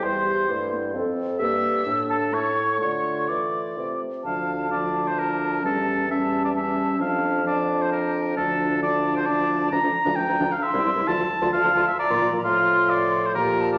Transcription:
<<
  \new Staff \with { instrumentName = "Flute" } { \time 3/4 \key c \major \tempo 4 = 131 c'''4. r4. | \key d \minor e'''4. a''8 cis'''4 | cis'''4 d'''4. r8 | a''4 a''2 |
a''4 a''4 a''4 | a''4 a''2 | a''4 a''4 a''4 | \key f \major bes''2 c'''4 |
a''2 bes''4 | c'''2 bes''8 a''8 | }
  \new Staff \with { instrumentName = "Oboe" } { \time 3/4 \key c \major c''4. r4. | \key d \minor e''4. a'8 cis''4 | cis''4 d''4. r8 | f''4 d''8. c''16 bes'4 |
a'4 e''8. d''16 e''4 | f''4 d''8. c''16 bes'4 | a'4 d''8. c''16 d''4 | \key f \major bes''4 g''8. f''16 e''4 |
a''4 f''8. e''16 d''4 | f''4 d''8. c''16 bes'8. d''16 | }
  \new Staff \with { instrumentName = "Clarinet" } { \time 3/4 \key c \major e'8 g'8 e'4 a'4 | \key d \minor g'4 d'4 e'4 | f'2~ f'8 r8 | d'4 d'2 |
cis'4 cis'4 cis'4 | d'4 d'2 | d'4 d'4 d'4 | \key f \major d'16 d'16 r16 d'16 d'16 d'16 d'16 r8 e'16 e'16 e'16 |
f'16 f'16 r16 f'16 f'16 f'16 f'16 r8 f'16 f'16 f'16 | f'2 g'4 | }
  \new Staff \with { instrumentName = "French horn" } { \clef bass \time 3/4 \key c \major g4 a8 b8 c'4 | \key d \minor bes4 a4 a4 | a2~ a8 r8 | f4 f2 |
g4 g4 g4 | f4 f2 | f4 f4 f4 | \key f \major f16 f16 r16 f16 f16 f16 f16 r8 g16 g16 g16 |
f16 f16 r16 f16 f16 f16 f16 r8 f16 f16 f16 | f2 f4 | }
  \new Staff \with { instrumentName = "Bassoon" } { \clef bass \time 3/4 \key c \major e,4 g,4 f,4 | \key d \minor g,4 a,4 a,4 | d4 e4 c4 | d,2. |
e,2. | f,2. | d,2. | \key f \major d,16 d,16 r16 d,16 d,16 d,16 d,16 r8 c,16 c,16 c,16 |
d,16 d,16 r16 d,16 d,16 d,16 d,16 r8 bes,16 bes,16 bes,16 | a,2 bes,4 | }
>>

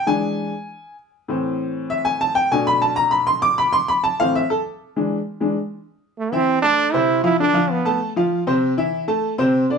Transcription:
<<
  \new Staff \with { instrumentName = "Upright piano" } { \time 4/4 \key a \minor \tempo 4 = 196 gis''2. r4 | r2 e''8 gis''8 a''8 g''8 | gis''8 b''8 a''8 bes''8 b''8 c'''8 d'''8 b''8 | c'''8 b''8 a''8 f''8 e''8 a'8 r4 |
r1 | r8 <e e' e''>4 <a a' a''>4 <c c' c''>4 <f f' f''>8 | <d d' d''>8 <f f' f''>4 <a a' a''>4 <f f' f''>4 <c c' c''>8~ | <c c' c''>8 <e e' e''>4 <a a' a''>4 <c c' c''>4 <d d' d''>8 | }
  \new Staff \with { instrumentName = "Upright piano" } { \clef bass \time 4/4 \key a \minor <e gis d'>4. r2 r8 | <a, e c'>1 | <b, a d'>1 | r4. <a, e c'>8 r2 |
<e gis d'>8 r4 <e gis d'>8 r2 | r1 | r1 | r1 | }
  \new Staff \with { instrumentName = "Trombone" } { \time 4/4 \key a \minor r1 | r1 | r1 | r1 |
r1 | a8 c'4 d'4 e'4 e'8 | d'4 b4 r2 | r1 | }
>>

